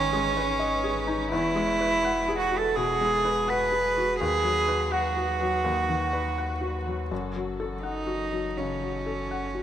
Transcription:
0.00 1.36 G#1 medium
0.00 1.35 G#2 medium
0.00 0.26 D#3 medium
0.00 0.13 G#3 medium
0.00 4.20 G#3 medium
0.00 1.32 C#4 loud
0.00 1.07 D#4 medium
0.00 1.32 D#4 medium
0.00 0.84 G#4 medium
0.00 0.37 B4 medium
0.00 4.20 B4 medium
0.00 0.59 D#5 medium
0.13 0.51 G#3 medium
0.37 0.75 B4 medium
0.59 0.99 D#5 medium
0.84 1.23 G#4 medium
1.07 1.32 D#4 medium
1.32 4.23 E1 medium
1.32 2.72 E2 medium
1.32 2.38 E4 loud
1.32 7.10 F#4 medium
1.56 1.95 G#3 medium
1.81 2.19 B4 medium
2.05 2.43 F#5 medium
2.29 2.67 G#4 medium
2.39 2.60 F#4 medium
2.52 2.91 F#4 medium
2.58 2.77 A4 medium
2.76 3.15 B2 medium
2.76 3.51 G#4 loud
3.01 3.39 G#3 medium
3.25 3.63 B4 medium
3.48 4.19 B4 loud
3.48 3.87 F#5 medium
3.72 4.11 G#4 medium
3.98 4.21 F#4 medium
4.20 5.62 D#2 medium
4.20 7.14 D#2 medium
4.20 9.63 F#3 medium
4.20 4.95 G#4 loud
4.20 7.08 B4 medium
4.44 4.83 F#3 medium
4.68 5.07 B4 medium
4.92 7.11 F#4 medium
4.92 5.31 F#5 medium
5.17 5.56 F#4 soft
5.41 5.80 F#3 soft
5.64 7.06 D#2 medium
5.89 6.28 D#3 soft
6.13 6.52 B4 soft
6.38 6.77 F#5 medium
6.61 7.01 F#4 soft
6.87 7.11 F#3 soft
7.10 9.63 F#1 medium
7.10 8.54 F#2 medium
7.10 9.63 F#4 medium
7.10 9.63 A4 soft
7.36 7.75 F#3 soft
7.60 7.99 A4 soft
7.83 8.59 D#4 medium
7.83 8.23 F#5 soft
8.07 8.47 F#4 soft
8.32 8.71 F#3 soft
8.57 8.96 C#3 soft
8.57 9.63 C#4 medium
8.82 9.21 F#3 soft
9.06 9.46 A4 soft
9.31 9.63 F#5 soft
9.55 9.63 F#4 soft

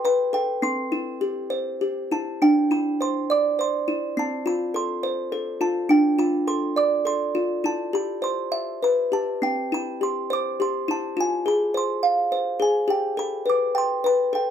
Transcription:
0.00 0.32 A4 medium
0.00 0.33 G5 medium
0.05 0.62 B4 medium
0.05 0.34 B5 medium
0.33 0.62 A4 medium
0.33 0.47 G5 medium
0.62 1.81 C4 medium
0.62 2.08 C6 medium
0.92 2.10 E4 medium
1.21 1.80 G4 medium
1.50 2.41 C5 medium
1.81 2.41 G4 medium
2.11 2.41 E4 medium
2.11 2.40 A5 medium
2.42 3.59 D4 medium
2.42 2.69 G5 medium
2.71 3.87 E4 medium
2.71 3.01 B5 medium
3.01 3.58 C5 medium
3.01 3.28 C6 medium
3.30 4.17 D5 medium
3.30 3.44 D6 medium
3.59 4.17 C5 medium
3.59 4.19 C6 loud
3.88 4.16 E4 medium
4.17 5.31 C4 medium
4.17 4.44 A5 medium
4.46 5.60 F4 medium
4.46 4.59 B5 medium
4.74 5.31 A4 medium
4.74 5.63 C6 medium
5.03 5.89 C5 medium
5.32 5.89 A4 medium
5.61 5.89 F4 medium
5.61 5.90 A5 medium
5.89 7.05 D4 medium
5.89 6.19 G5 medium
6.19 7.34 F4 medium
6.19 6.48 B5 medium
6.47 7.04 A4 medium
6.47 6.77 C6 medium
6.76 7.64 D5 medium
6.76 6.90 D6 medium
7.05 7.64 A4 medium
7.05 7.66 C6 medium
7.35 7.64 F4 medium
7.64 8.82 E4 medium
7.64 7.95 A5 medium
7.93 8.82 G4 medium
7.93 8.24 B5 medium
8.22 8.82 C5 medium
8.22 8.78 C6 medium
8.52 8.82 E5 medium
8.83 9.42 B4 medium
8.83 8.97 B5 medium
9.12 9.42 G4 medium
9.12 9.26 A5 medium
9.42 10.60 C4 medium
9.42 9.70 G5 medium
9.72 10.87 E4 medium
9.72 10.01 B5 medium
10.01 10.59 G4 medium
10.01 10.16 C6 medium
10.30 11.17 C5 medium
10.30 10.59 D6 medium
10.60 11.17 G4 medium
10.60 10.90 C6 medium
10.88 11.17 E4 medium
10.88 11.19 A5 medium
11.17 12.31 F4 medium
11.17 11.45 G#5 medium
11.46 12.58 G#4 medium
11.46 11.76 B5 medium
11.74 12.31 C5 medium
11.74 12.57 C6 medium
12.03 12.88 F5 medium
12.32 12.88 C5 medium
12.60 12.88 G#4 medium
12.60 12.74 G#5 medium
12.88 14.04 G4 medium
12.88 13.19 G5 medium
13.17 14.32 A4 medium
13.17 13.32 B5 medium
13.46 14.03 B4 medium
13.46 13.78 D6 medium
13.75 14.34 G5 medium
13.75 14.06 C6 medium
14.04 14.50 B4 medium
14.04 14.19 B5 medium
14.33 14.50 A4 medium
14.33 14.50 G5 medium

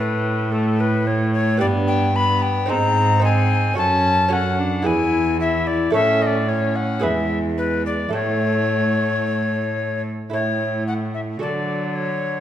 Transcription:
0.00 1.57 A2 medium
0.00 1.63 A2 medium
0.00 0.50 A3 medium
0.00 1.55 A3 soft
0.00 1.56 C#4 soft
0.00 1.56 E4 soft
0.00 0.53 B4 medium
0.52 1.05 A3 medium
0.52 0.82 A4 medium
0.80 1.09 B4 loud
1.07 1.62 A3 medium
1.07 1.33 C#5 medium
1.34 1.60 C#5 loud
1.57 2.65 G2 medium
1.57 2.72 G2 medium
1.57 2.64 B3 medium
1.57 2.15 B3 medium
1.57 2.65 G4 soft
1.57 1.66 D5 loud
1.88 2.17 G5 medium
2.15 2.71 B3 medium
2.15 2.44 B5 loud
2.42 2.72 G5 loud
2.66 3.74 G#2 medium
2.66 3.18 C4 medium
2.66 3.20 D#4 medium
2.66 3.21 C5 medium
2.70 3.77 G#2 medium
2.70 3.24 C4 medium
2.70 3.24 A#5 loud
3.20 3.73 C4 medium
3.20 3.75 D#4 medium
3.20 3.75 C5 medium
3.24 3.77 C4 medium
3.24 3.77 G#5 loud
3.74 4.27 C#4 soft
3.74 4.29 F#4 medium
3.74 4.29 A4 medium
3.74 4.34 A5 loud
3.78 4.82 F#2 medium
3.78 4.87 F#2 medium
3.78 4.31 C#4 medium
4.29 4.82 C#4 medium
4.29 4.61 C#4 medium
4.29 4.83 F#4 medium
4.29 4.84 A4 medium
4.33 4.88 F#5 loud
4.59 4.87 D4 medium
4.82 5.94 E2 medium
4.82 5.89 E4 medium
4.82 5.40 E4 medium
4.82 5.90 G#4 soft
4.82 5.91 B4 medium
4.82 5.40 G#5 loud
4.87 5.91 E2 medium
5.40 5.93 E4 medium
5.40 5.69 E5 loud
5.67 5.93 D5 medium
5.90 6.99 A2 medium
5.90 6.98 E4 medium
5.90 6.99 A4 medium
5.90 6.99 C#5 soft
5.90 6.24 E5 loud
5.94 7.05 A2 medium
5.94 6.48 C#4 medium
6.22 6.28 D#5 medium
6.27 6.50 D5 loud
6.48 7.04 C#4 medium
6.48 6.77 C#5 medium
6.76 7.05 F#5 medium
7.00 8.09 E2 medium
7.00 7.57 G#3 medium
7.00 8.08 E4 medium
7.00 8.08 G#4 medium
7.00 8.09 B4 soft
7.00 7.39 E5 medium
7.04 8.12 E2 medium
7.58 8.12 G#3 medium
7.58 7.83 B4 medium
7.86 8.13 D5 medium
8.09 10.09 A2 medium
8.09 10.27 E4 soft
8.09 10.28 A4 soft
8.13 10.09 A2 medium
8.13 10.09 A3 medium
8.13 10.02 C#5 loud
10.30 11.38 A2 medium
10.30 11.38 A2 soft
10.30 11.43 A3 medium
10.30 11.37 E4 soft
10.30 11.38 A4 soft
10.30 10.84 C#5 medium
10.87 10.94 F#5 medium
11.14 11.20 E5 medium
11.39 12.40 D3 medium
11.39 12.40 D3 soft
11.39 12.40 F#3 medium
11.39 12.40 F#4 soft
11.39 12.40 A4 soft
11.39 11.97 D5 medium
11.96 12.40 C#5 medium

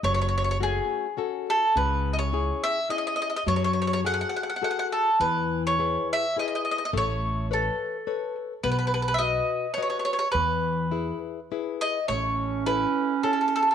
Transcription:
0.03 0.78 F#1 medium
0.03 0.59 F#3 medium
0.03 0.12 C#5 medium
0.14 0.20 C#5 medium
0.21 0.27 C#5 medium
0.29 0.36 C#5 medium
0.38 0.43 C#5 medium
0.44 0.50 C#5 medium
0.51 0.57 C#5 medium
0.60 1.07 A3 soft
0.60 1.06 C#4 soft
0.60 1.06 F#4 soft
0.60 1.46 G#4 medium
1.17 1.63 C#4 soft
1.17 1.63 F#4 soft
1.17 1.64 A4 soft
1.50 1.76 A4 medium
1.75 2.49 C#2 medium
1.75 2.31 C#3 medium
1.75 2.13 B4 medium
2.13 2.18 D#5 medium
2.19 2.64 C#5 medium
2.33 2.78 C#4 soft
2.33 2.78 E4 soft
2.33 2.79 G#4 medium
2.64 2.88 E5 medium
2.89 3.35 C#4 soft
2.89 3.36 E4 soft
2.89 3.36 G#4 soft
2.89 2.97 D#5 medium
2.98 3.06 D#5 medium
3.07 3.14 D#5 medium
3.16 3.21 D#5 medium
3.22 3.29 D#5 medium
3.30 3.35 D#5 medium
3.36 3.43 D#5 medium
3.47 4.21 F#2 medium
3.47 4.02 F#3 medium
3.47 3.55 C#5 medium
3.56 3.63 C#5 medium
3.64 3.72 C#5 medium
3.73 3.80 C#5 soft
3.82 3.86 C#5 medium
3.87 3.92 C#5 medium
3.93 4.00 C#5 medium
4.05 4.51 F#4 soft
4.05 4.51 G#4 soft
4.05 4.51 A4 soft
4.05 4.13 F#5 medium
4.14 4.20 F#5 medium
4.21 4.28 F#5 medium
4.29 4.35 F#5 medium
4.37 4.42 F#5 soft
4.43 4.48 F#5 soft
4.50 4.55 F#5 medium
4.56 4.63 F#5 soft
4.62 5.08 F#4 soft
4.62 5.09 G#4 soft
4.62 5.09 A4 soft
4.62 4.69 F#5 medium
4.71 4.78 F#5 soft
4.79 4.87 F#5 medium
4.92 5.18 A4 medium
5.20 5.95 E2 medium
5.20 5.77 E3 medium
5.20 5.62 B4 medium
5.67 6.08 C#5 medium
5.79 6.25 E4 soft
5.79 6.25 G#4 soft
5.79 6.25 B4 soft
6.13 6.36 E5 medium
6.36 6.82 E4 soft
6.36 6.83 G#4 soft
6.36 6.83 B4 soft
6.36 6.45 D#5 medium
6.48 6.54 D#5 soft
6.55 6.61 D#5 medium
6.65 6.70 D#5 medium
6.71 6.76 D#5 medium
6.78 6.83 D#5 soft
6.85 6.90 D#5 medium
6.93 7.67 A1 medium
6.93 7.48 A3 medium
6.97 7.48 C#5 medium
7.51 7.96 A4 soft
7.51 8.35 A4 medium
7.51 7.96 B4 soft
7.51 7.96 C#5 soft
8.07 8.52 A4 soft
8.07 8.52 B4 soft
8.07 8.52 C#5 soft
8.64 9.38 B1 medium
8.64 9.19 B3 medium
8.64 8.70 B4 medium
8.71 8.77 B4 medium
8.79 8.86 B4 medium
8.87 8.93 B4 medium
8.94 9.01 B4 medium
9.02 9.07 B4 soft
9.08 9.14 B4 medium
9.14 9.20 E5 medium
9.18 9.66 F#4 soft
9.18 9.66 B4 soft
9.18 9.73 D#5 medium
9.18 9.66 D#5 soft
9.74 10.23 F#4 soft
9.74 10.23 B4 soft
9.74 9.81 C#5 medium
9.78 10.23 D#5 soft
9.83 9.89 C#5 medium
9.90 9.98 C#5 soft
9.99 10.04 C#5 soft
10.05 10.12 C#5 medium
10.13 10.18 C#5 medium
10.19 10.28 C#5 medium
10.32 11.10 E2 medium
10.32 10.90 E3 medium
10.32 11.18 B4 medium
10.91 11.38 E4 soft
10.91 11.39 G#4 soft
10.91 11.39 B4 soft
11.52 11.98 E4 soft
11.52 11.98 G#4 soft
11.52 11.98 B4 soft
11.81 12.08 D#5 medium
12.08 12.84 A1 medium
12.08 12.66 A3 medium
12.08 13.75 C#4 medium
12.08 12.66 C#5 medium
12.66 13.12 E4 soft
12.66 13.13 A4 soft
12.66 13.20 B4 medium
12.66 13.13 C#5 soft
13.23 13.69 E4 soft
13.23 13.31 A4 medium
13.23 13.70 A4 soft
13.23 13.70 C#5 soft
13.33 13.40 A4 soft
13.41 13.47 A4 soft
13.48 13.54 A4 soft
13.56 13.61 A4 medium
13.63 13.69 A4 medium
13.71 13.75 A4 medium

